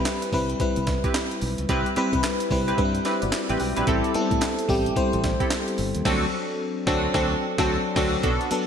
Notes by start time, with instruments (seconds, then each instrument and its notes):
Already playing: fm electric piano G3 C4 E4 B4
0.05 snare, clap, closed hi-hat
0.22 closed hi-hat
0.33 fingered electric bass C2, fm electric piano G3 C4 E4 B4, kick, open hi-hat
0.50 closed hi-hat
0.60 fm electric piano G3 C4 E4 B4, muted fingered electric bass stroke, kick, closed hi-hat
0.76 fingered electric bass C2, closed hi-hat
0.87 kick, snare, closed hi-hat
1.04 analog polysynth C4 E4 G4 B4, kick, closed hi-hat
1.14 snare, clap, closed hi-hat
1.31 closed hi-hat
1.41 fingered electric bass B1, open hi-hat
1.58 fingered electric bass C#2, closed hi-hat
1.69 fingered electric bass C2, fm electric piano G3 C4 E4 B4, analog polysynth C4 E4 G4 B4, kick, closed hi-hat
1.86 closed hi-hat
1.96 fm electric piano G3 C4 E4 B4, analog polysynth C4 E4 G4 B4, muted fingered electric bass stroke, closed hi-hat
2.13 fingered electric bass C3, kick, closed hi-hat
2.23 snare, clap, closed hi-hat
2.40 closed hi-hat
2.51 fingered electric bass C2, fm electric piano G3 C4 E4 B4, kick, open hi-hat
2.68 analog polysynth C4 E4 G4 B4, closed hi-hat
2.77 fingered electric bass G2, fm electric piano G3 C4 D4 B4, kick, closed hi-hat
2.85 fm electric piano E4
2.95 closed hi-hat
3.05 analog polysynth C4 E4 G4 B4, fm electric piano D4 B4, snare, closed hi-hat
3.22 fingered electric bass G1, fm electric piano F#4 D5, closed hi-hat
3.32 snare, clap, closed hi-hat
3.49 fingered electric bass A1, analog polysynth C4 E4 G4 B4, fm electric piano G4 E5, closed hi-hat
3.60 fingered electric bass B1, fm electric piano B4 G5, open hi-hat
3.76 fingered electric bass A#1, analog polysynth C4 E4 G4 B4, fm electric piano D5 B5, closed hi-hat
3.87 fingered electric bass A1, fm electric piano G3 C4 E4 A4, analog polysynth C4 E4 G4 A4, kick, closed hi-hat
4.04 closed hi-hat
4.14 fm electric piano G3 B3 E4 A4, muted fingered electric bass stroke, closed hi-hat
4.21 fm electric piano C4
4.31 fingered electric bass A2, kick, closed hi-hat
4.42 snare, clap, closed hi-hat
4.59 closed hi-hat
4.68 fingered electric bass A1, fm electric piano G3 C4 E4 G4, kick, open hi-hat
4.86 closed hi-hat
4.96 fm electric piano G3 C4 E4 C5, muted fingered electric bass stroke, kick, closed hi-hat
5.13 fingered electric bass A1, closed hi-hat
5.24 kick, snare, closed hi-hat
5.40 analog polysynth C4 E4 G4 A4, kick, closed hi-hat
5.50 snare, clap, closed hi-hat
5.68 closed hi-hat
5.78 fingered electric bass G1, open hi-hat
5.95 fingered electric bass D#2, closed hi-hat
6.05 fingered electric bass D2, fm electric piano F#3 C4 D4 A4, analog polysynth C4 D4 F#4 A4, kick, snare, crash
6.87 fingered electric bass D2, fm electric piano F#3 C4 D4 A4, analog polysynth C4 D4 F#4 A4, kick, snare
7.14 fingered electric bass D2, fm electric piano F#3 C4 D4 A4, analog polysynth C4 D4 F#4 A4, kick, snare
7.58 fingered electric bass D2, fm electric piano F#3 C4 D4 A4, analog polysynth C4 D4 F#4 A4, kick, snare
7.96 fingered electric bass D2, fm electric piano F#3 C4 D4 A4, analog polysynth C4 D4 F#4 A4, kick, snare, crash
8.23 fingered electric bass B1, analog polysynth B3 D4 F#4 A4, kick, closed hi-hat
8.41 closed hi-hat
8.51 fm electric piano F#3 B3 D4 A4, muted fingered electric bass stroke, closed hi-hat, tambourine